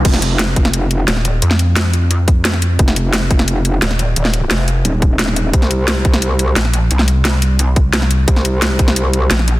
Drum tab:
CC |x---------------|----------------|----------------|----------------|
HH |x-x-x-x-x-x-x-x-|x-x-x-x-x-x-x-x-|x-x-x-x-x-x-x-x-|x-x-x-x-x-x-x-x-|
SD |-o--o--o----oo--|-o--o-------oo--|-o--o--o----oo--|-o--o-------oo--|
BD |o-----o---------|----------o-----|o-----o---------|----------o-----|

CC |----------------|----------------|----------------|
HH |x-x-x-x-x-x-x-x-|x-x-x-x-x-x-x-x-|x-x-x-x-x-x-x-x-|
SD |-o--o--o----oo--|-o--o-------oo--|-o--o--o----oo--|
BD |o-----o---------|----------o-----|o-----o---------|